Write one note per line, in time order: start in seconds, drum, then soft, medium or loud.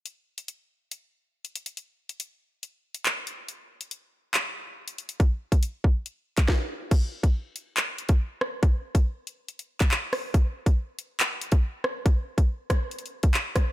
0.06 closed hi-hat medium
0.38 closed hi-hat medium
0.48 closed hi-hat medium
0.91 closed hi-hat medium
1.45 closed hi-hat medium
1.55 closed hi-hat medium
1.66 closed hi-hat medium
1.77 closed hi-hat medium
2.09 closed hi-hat medium
2.20 closed hi-hat loud
2.63 closed hi-hat medium
2.94 closed hi-hat medium
3.05 clap loud
3.05 closed hi-hat medium
3.27 closed hi-hat medium
3.48 closed hi-hat medium
3.81 closed hi-hat medium
3.91 closed hi-hat loud
4.34 clap loud
4.34 closed hi-hat medium
4.88 closed hi-hat medium
4.98 closed hi-hat medium
5.09 closed hi-hat medium
5.20 kick loud
5.20 closed hi-hat medium
5.52 kick medium
5.52 closed hi-hat medium
5.63 closed hi-hat loud
5.84 kick medium
6.06 closed hi-hat medium
6.37 kick loud
6.37 clap medium
6.37 closed hi-hat medium
6.48 kick loud
6.48 snare medium
6.91 kick loud
6.91 closed hi-hat medium
6.91 crash loud
7.23 kick medium
7.23 closed hi-hat medium
7.56 closed hi-hat medium
7.77 clap loud
7.77 closed hi-hat medium
7.98 closed hi-hat medium
8.09 kick loud
8.09 closed hi-hat medium
8.41 cross-stick loud
8.63 kick loud
8.63 closed hi-hat medium
8.95 kick medium
8.95 closed hi-hat medium
9.27 closed hi-hat medium
9.48 closed hi-hat medium
9.59 closed hi-hat medium
9.80 kick loud
9.80 clap medium
9.80 closed hi-hat medium
9.91 clap loud
10.13 cross-stick medium
10.13 open hi-hat medium
10.34 kick loud
10.34 closed hi-hat medium
10.66 kick loud
10.66 closed hi-hat medium
10.99 closed hi-hat medium
11.20 clap loud
11.20 closed hi-hat medium
11.41 closed hi-hat medium
11.52 kick loud
11.52 closed hi-hat medium
11.84 cross-stick loud
12.06 kick loud
12.06 closed hi-hat medium
12.38 kick loud
12.38 closed hi-hat medium
12.70 kick medium
12.70 cross-stick loud
12.70 closed hi-hat medium
12.91 closed hi-hat medium
12.99 closed hi-hat medium
13.06 closed hi-hat medium
13.23 kick loud
13.23 closed hi-hat medium
13.34 clap loud
13.56 kick loud
13.56 cross-stick medium
13.56 closed hi-hat medium